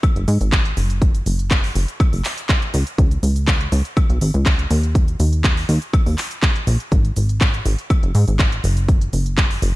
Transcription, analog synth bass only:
0, 0, Header, 1, 2, 480
1, 0, Start_track
1, 0, Tempo, 491803
1, 993, Time_signature, 4, 2, 24, 8
1, 9525, End_track
2, 0, Start_track
2, 0, Title_t, "Analog synth bass"
2, 0, Program_c, 0, 38
2, 158, Note_on_c, 0, 30, 100
2, 248, Note_off_c, 0, 30, 0
2, 272, Note_on_c, 0, 44, 106
2, 372, Note_off_c, 0, 44, 0
2, 398, Note_on_c, 0, 32, 95
2, 714, Note_off_c, 0, 32, 0
2, 752, Note_on_c, 0, 30, 91
2, 1194, Note_off_c, 0, 30, 0
2, 1233, Note_on_c, 0, 30, 81
2, 1674, Note_off_c, 0, 30, 0
2, 1713, Note_on_c, 0, 30, 95
2, 1812, Note_off_c, 0, 30, 0
2, 2078, Note_on_c, 0, 30, 87
2, 2168, Note_off_c, 0, 30, 0
2, 2673, Note_on_c, 0, 37, 100
2, 2772, Note_off_c, 0, 37, 0
2, 2913, Note_on_c, 0, 37, 102
2, 3104, Note_off_c, 0, 37, 0
2, 3152, Note_on_c, 0, 37, 81
2, 3594, Note_off_c, 0, 37, 0
2, 3633, Note_on_c, 0, 37, 101
2, 3732, Note_off_c, 0, 37, 0
2, 3999, Note_on_c, 0, 35, 106
2, 4088, Note_off_c, 0, 35, 0
2, 4113, Note_on_c, 0, 32, 107
2, 4212, Note_off_c, 0, 32, 0
2, 4239, Note_on_c, 0, 37, 94
2, 4554, Note_off_c, 0, 37, 0
2, 4593, Note_on_c, 0, 39, 92
2, 5034, Note_off_c, 0, 39, 0
2, 5073, Note_on_c, 0, 39, 80
2, 5514, Note_off_c, 0, 39, 0
2, 5553, Note_on_c, 0, 39, 98
2, 5652, Note_off_c, 0, 39, 0
2, 5918, Note_on_c, 0, 39, 85
2, 6008, Note_off_c, 0, 39, 0
2, 6513, Note_on_c, 0, 34, 103
2, 6612, Note_off_c, 0, 34, 0
2, 6752, Note_on_c, 0, 32, 106
2, 6944, Note_off_c, 0, 32, 0
2, 6993, Note_on_c, 0, 32, 83
2, 7434, Note_off_c, 0, 32, 0
2, 7472, Note_on_c, 0, 32, 99
2, 7572, Note_off_c, 0, 32, 0
2, 7838, Note_on_c, 0, 30, 101
2, 7928, Note_off_c, 0, 30, 0
2, 7953, Note_on_c, 0, 44, 106
2, 8052, Note_off_c, 0, 44, 0
2, 8078, Note_on_c, 0, 32, 97
2, 8394, Note_off_c, 0, 32, 0
2, 8433, Note_on_c, 0, 30, 96
2, 8874, Note_off_c, 0, 30, 0
2, 8913, Note_on_c, 0, 30, 82
2, 9354, Note_off_c, 0, 30, 0
2, 9393, Note_on_c, 0, 30, 99
2, 9492, Note_off_c, 0, 30, 0
2, 9525, End_track
0, 0, End_of_file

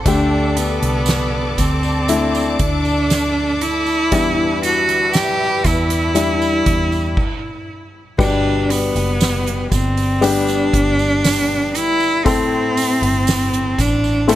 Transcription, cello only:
0, 0, Header, 1, 2, 480
1, 0, Start_track
1, 0, Tempo, 1016949
1, 27, Time_signature, 4, 2, 24, 8
1, 6775, End_track
2, 0, Start_track
2, 0, Title_t, "Cello"
2, 0, Program_c, 0, 42
2, 27, Note_on_c, 0, 62, 83
2, 267, Note_on_c, 0, 59, 85
2, 274, Note_off_c, 0, 62, 0
2, 752, Note_on_c, 0, 60, 85
2, 759, Note_off_c, 0, 59, 0
2, 1232, Note_on_c, 0, 62, 93
2, 1240, Note_off_c, 0, 60, 0
2, 1710, Note_on_c, 0, 64, 101
2, 1717, Note_off_c, 0, 62, 0
2, 2189, Note_off_c, 0, 64, 0
2, 2195, Note_on_c, 0, 66, 94
2, 2434, Note_on_c, 0, 67, 96
2, 2441, Note_off_c, 0, 66, 0
2, 2674, Note_on_c, 0, 64, 88
2, 2681, Note_off_c, 0, 67, 0
2, 3630, Note_off_c, 0, 64, 0
2, 3867, Note_on_c, 0, 62, 96
2, 4114, Note_on_c, 0, 59, 89
2, 4121, Note_off_c, 0, 62, 0
2, 4587, Note_off_c, 0, 59, 0
2, 4590, Note_on_c, 0, 60, 87
2, 4832, Note_on_c, 0, 62, 110
2, 4839, Note_off_c, 0, 60, 0
2, 5555, Note_on_c, 0, 64, 118
2, 5562, Note_off_c, 0, 62, 0
2, 5792, Note_on_c, 0, 60, 106
2, 5799, Note_off_c, 0, 64, 0
2, 6513, Note_on_c, 0, 62, 96
2, 6521, Note_off_c, 0, 60, 0
2, 6758, Note_on_c, 0, 64, 104
2, 6765, Note_off_c, 0, 62, 0
2, 6775, Note_off_c, 0, 64, 0
2, 6775, End_track
0, 0, End_of_file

